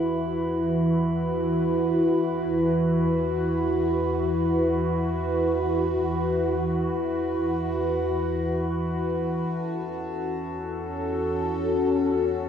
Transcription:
0.00 9.43 E2 medium
0.00 9.46 E3 medium
0.00 11.34 E4 medium
0.00 12.49 F#4 medium
0.00 9.47 B4 medium
0.00 9.47 B5 soft
9.43 12.49 E2 medium
9.43 12.49 C#4 medium
9.43 12.49 A4 medium
9.43 12.49 A5 medium
9.81 12.49 A4 medium

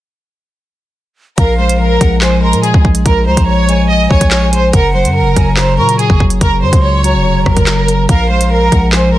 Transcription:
1.38 1.98 A#1 loud
1.38 1.78 F3 medium
1.38 1.57 A#4 medium
1.38 1.97 F5 loud
1.38 kick loud
1.38 closed hi-hat medium
1.58 2.00 G#3 medium
1.58 1.78 C5 medium
1.69 closed hi-hat medium
1.80 2.21 F3 medium
1.80 2.19 A#4 medium
2.01 2.55 A#1 loud
2.01 2.42 G#3 medium
2.01 2.21 F#5 medium
2.01 kick medium
2.01 closed hi-hat medium
2.21 3.04 F3 medium
2.21 2.41 C5 medium
2.21 2.42 G#5 medium
2.21 snare loud
2.21 clap medium
2.43 2.84 G#3 medium
2.43 2.61 A#4 loud
2.43 2.63 C6 medium
2.53 2.73 A#2 loud
2.53 closed hi-hat medium
2.64 2.82 G#4 medium
2.64 closed hi-hat medium
2.74 2.84 C#2 loud
2.74 kick loud
2.85 3.05 A#1 loud
2.85 3.25 G#3 medium
2.85 kick loud
2.95 closed hi-hat medium
3.05 3.28 A#1 loud
3.05 3.46 F3 medium
3.05 3.24 A#4 medium
3.05 kick loud
3.05 closed hi-hat medium
3.26 3.37 C#2 loud
3.26 3.67 G#3 medium
3.26 3.45 C5 medium
3.26 3.66 A#5 medium
3.37 4.08 A#1 loud
3.37 kick loud
3.37 closed hi-hat medium
3.47 3.89 F3 medium
3.47 3.87 C#5 medium
3.68 4.09 G#3 medium
3.68 4.69 G#5 medium
3.68 closed hi-hat medium
3.90 4.74 F3 medium
3.90 4.08 D#5 medium
4.10 4.21 A#1 loud
4.10 4.51 G#3 medium
4.10 4.29 C#5 medium
4.10 kick medium
4.21 4.71 A#1 loud
4.21 kick medium
4.21 closed hi-hat medium
4.31 4.50 C#5 medium
4.31 snare loud
4.31 clap medium
4.31 closed hi-hat medium
4.52 4.73 G#3 medium
4.52 4.71 C5 medium
4.52 closed hi-hat medium
4.73 5.06 F#1 loud
4.73 5.14 C#3 medium
4.73 4.92 A#4 loud
4.73 5.33 F#5 loud
4.73 kick loud
4.73 closed hi-hat medium
4.94 5.35 F#3 medium
4.94 5.13 C5 medium
5.05 5.22 F#2 loud
5.05 closed hi-hat medium
5.15 5.56 C#3 medium
5.15 5.55 A#4 medium
5.21 5.36 F#1 loud
5.36 5.80 F#1 loud
5.36 5.77 F#3 loud
5.36 5.56 G#5 medium
5.36 kick medium
5.36 closed hi-hat medium
5.57 6.40 C#3 medium
5.57 5.76 C5 medium
5.57 5.77 A#5 loud
5.57 snare loud
5.57 clap medium
5.78 6.08 A#2 loud
5.78 6.19 F#3 medium
5.78 5.97 A#4 loud
5.78 5.98 C#6 medium
5.89 closed hi-hat medium
5.99 6.18 G#4 medium
5.99 closed hi-hat medium
6.10 6.20 F#1 loud
6.10 kick loud
6.20 6.40 F#1 loud
6.20 6.61 F#3 medium
6.20 kick loud
6.30 closed hi-hat medium
6.41 6.64 F#1 loud
6.41 6.82 C#3 loud
6.41 6.60 A#4 loud
6.41 kick loud
6.41 closed hi-hat medium
6.62 6.72 F#2 loud
6.62 7.03 F#3 medium
6.62 6.81 C5 medium
6.62 7.02 C6 medium
6.73 7.16 C#2 loud
6.73 kick loud
6.73 closed hi-hat medium
6.83 7.24 C#3 medium
6.83 7.42 C#5 medium
7.04 7.45 F#3 loud
7.04 7.63 A#5 medium
7.04 closed hi-hat medium
7.15 7.45 F1 medium
7.25 8.09 C#3 medium
7.46 7.56 F#1 loud
7.46 7.87 F#3 medium
7.46 8.05 A#4 medium
7.46 kick medium
7.46 cross-stick loud
7.57 8.07 F#1 loud
7.57 kick medium
7.57 closed hi-hat medium
7.67 snare loud
7.67 clap medium
7.67 closed hi-hat medium
7.88 8.09 F#3 medium
7.88 closed hi-hat medium
8.09 8.70 A#1 loud
8.09 8.50 F3 medium
8.09 8.28 A#4 loud
8.09 8.68 F5 loud
8.09 kick loud
8.09 closed hi-hat medium
8.30 8.71 G#3 medium
8.30 8.49 C5 medium
8.41 closed hi-hat medium
8.51 8.92 F3 medium
8.51 8.91 A#4 medium
8.72 9.18 A#1 loud
8.72 9.13 G#3 medium
8.72 8.92 F#5 medium
8.72 kick medium
8.72 closed hi-hat medium
8.93 9.18 F3 medium
8.93 9.12 C5 medium
8.93 9.13 G#5 medium
8.93 snare loud
8.93 clap medium
9.14 9.18 G#3 medium
9.14 9.18 A#4 loud
9.14 9.18 C6 medium

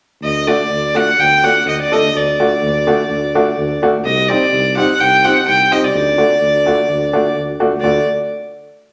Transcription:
0.22 0.51 D2 medium
0.22 0.49 D#5 medium
0.47 0.59 A3 medium
0.47 0.59 D4 medium
0.47 0.59 F#4 medium
0.47 0.98 D5 medium
0.70 0.99 D2 medium
0.94 1.07 A3 medium
0.94 1.07 D4 soft
0.94 1.07 F#4 medium
0.94 1.21 F#5 medium
1.18 1.47 D2 medium
1.18 1.46 G5 medium
1.43 1.55 A3 medium
1.43 1.55 D4 medium
1.43 1.55 F#4 medium
1.43 1.67 F#5 medium
1.65 1.87 D2 medium
1.65 1.79 D#5 medium
1.81 1.95 D5 medium
1.92 2.03 A3 medium
1.92 2.03 D4 medium
1.92 2.03 A4 medium
1.92 2.18 D#5 medium
2.02 2.09 D2 medium
2.13 2.42 D2 medium
2.13 3.83 D5 medium
2.40 2.51 A3 medium
2.40 2.51 D4 medium
2.40 2.51 F#4 medium
2.61 2.90 D2 medium
2.87 2.99 A3 medium
2.87 2.99 D4 medium
2.87 2.99 F#4 medium
3.09 3.38 D2 medium
3.35 3.46 A3 medium
3.35 3.47 D4 medium
3.35 3.47 F#4 medium
3.57 3.79 D2 medium
3.82 3.94 A3 medium
3.82 3.94 D4 medium
3.82 3.94 F#4 medium
3.93 4.00 D2 medium
4.05 4.33 C2 medium
4.05 4.30 D#5 medium
4.29 4.41 C4 medium
4.29 4.41 D#4 medium
4.29 4.42 G4 medium
4.29 4.76 D5 medium
4.52 4.81 C2 medium
4.77 4.89 C4 medium
4.77 4.89 D#4 medium
4.77 4.89 G4 medium
4.77 5.02 F#5 medium
4.99 5.28 C2 medium
4.99 5.26 G5 medium
5.24 5.36 C4 medium
5.24 5.36 D#4 medium
5.24 5.36 G4 medium
5.24 5.47 F#5 medium
5.47 5.69 C2 medium
5.47 5.73 G5 medium
5.71 5.83 C4 medium
5.71 5.83 D#4 medium
5.71 5.83 G4 medium
5.71 5.86 D#5 medium
5.82 5.90 C2 medium
5.82 7.36 D5 medium
5.94 6.22 D2 medium
6.18 6.30 A3 medium
6.18 6.30 D4 medium
6.18 6.30 F#4 medium
6.41 6.70 D2 medium
6.66 6.77 A3 medium
6.66 6.77 D4 medium
6.66 6.78 F#4 medium
6.88 7.16 D2 medium
7.13 7.24 A3 medium
7.13 7.24 D4 medium
7.13 7.24 F#4 medium
7.35 7.56 D2 medium
7.60 7.71 A3 medium
7.60 7.71 D4 medium
7.60 7.71 F#4 medium
7.70 7.77 D2 medium
7.81 8.03 D2 medium
7.81 8.04 A3 medium
7.81 8.05 D4 medium
7.81 8.05 F#4 medium
7.81 8.03 D5 medium

